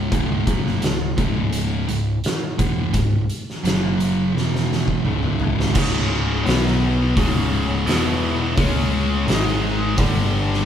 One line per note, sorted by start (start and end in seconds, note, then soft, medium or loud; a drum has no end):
0.00 0.10 G#2 loud
0.00 0.10 C#3 loud
0.11 0.44 C#1 loud
0.11 0.45 C#2 medium
0.11 0.45 G#2 medium
0.11 0.46 C#3 medium
0.11 kick loud
0.11 closed hi-hat medium
0.46 0.80 F#1 loud
0.46 0.80 F#2 medium
0.46 0.81 C#3 medium
0.46 0.81 F#3 medium
0.46 kick loud
0.46 closed hi-hat medium
0.67 snare soft
0.82 1.15 C#1 medium
0.82 1.11 C#2 medium
0.82 1.11 G#2 medium
0.82 snare loud
0.82 closed hi-hat medium
1.18 1.84 C#1 medium
1.18 1.87 C#2 medium
1.18 1.87 G#2 medium
1.18 1.88 C#3 loud
1.18 kick loud
1.18 closed hi-hat medium
1.53 closed hi-hat medium
1.88 2.21 C#1 medium
1.88 2.16 C#2 medium
1.88 2.16 G#2 medium
1.88 closed hi-hat medium
2.24 snare loud
2.24 closed hi-hat medium
2.58 2.92 E1 medium
2.58 2.92 E2 medium
2.58 2.93 B2 medium
2.58 2.93 E3 medium
2.58 kick loud
2.58 closed hi-hat medium
2.94 3.26 C#1 medium
2.94 3.22 C#2 medium
2.94 3.22 G#2 medium
2.94 kick medium
2.94 closed hi-hat medium
3.30 closed hi-hat medium
3.50 snare soft
3.64 4.30 F#1 medium
3.64 4.34 F#2 medium
3.64 4.35 C#3 medium
3.64 4.35 F#3 loud
3.64 snare loud
3.64 closed hi-hat medium
4.00 closed hi-hat medium
4.34 5.01 E1 medium
4.34 5.04 E2 medium
4.34 5.04 B2 medium
4.34 5.04 E3 loud
4.34 snare medium
4.56 snare medium
4.72 snare medium
4.88 kick medium
5.04 5.71 C#1 medium
5.04 5.74 C#2 medium
5.04 5.75 G#2 medium
5.04 5.75 C#3 medium
5.04 mid tom medium
5.23 mid tom medium
5.40 floor tom loud
5.60 snare medium
5.75 6.42 C#1 medium
5.75 6.45 C#2 loud
5.75 6.45 G#2 loud
5.75 6.45 C#3 loud
5.75 6.46 C#3 medium
5.75 6.46 G#3 medium
5.75 6.46 C#4 medium
5.75 kick loud
5.75 crash loud
6.46 7.12 B1 medium
6.46 7.15 B2 loud
6.46 7.15 F#3 loud
6.46 7.16 B3 medium
6.46 7.15 B3 loud
6.46 7.15 F#4 medium
6.46 7.85 C#5 medium
6.46 snare loud
6.46 open hi-hat medium
6.67 snare soft
7.16 7.82 C#1 medium
7.16 7.86 C#2 medium
7.16 7.86 G#2 medium
7.16 7.86 C#3 loud
7.16 7.86 C#4 medium
7.16 7.86 G#4 medium
7.16 kick loud
7.16 open hi-hat medium
7.87 8.53 E1 loud
7.87 8.56 E2 loud
7.87 8.56 B2 loud
7.87 8.56 E3 loud
7.87 8.56 E4 medium
7.87 8.56 B4 medium
7.87 8.56 F#5 medium
7.87 snare loud
7.87 open hi-hat medium
8.57 9.23 C#2 loud
8.57 9.26 C#3 medium
8.57 9.26 G#3 loud
8.57 9.27 C#4 medium
8.57 9.26 C#4 loud
8.57 9.96 G#4 medium
8.57 9.26 C#5 medium
8.57 kick loud
8.57 open hi-hat medium
9.27 9.93 G#1 medium
9.27 9.96 G#2 medium
9.27 9.96 D#3 loud
9.27 9.96 G#3 loud
9.27 9.97 G#3 medium
9.27 9.97 D#4 medium
9.27 snare loud
9.27 open hi-hat medium
9.48 snare soft
9.97 10.64 G1 loud
9.97 10.65 G2 loud
9.97 10.65 D3 medium
9.97 10.65 G3 medium
9.97 10.65 G3 loud
9.97 10.65 D4 medium
9.97 10.65 A4 medium
9.97 kick loud
9.97 open hi-hat medium
10.53 snare soft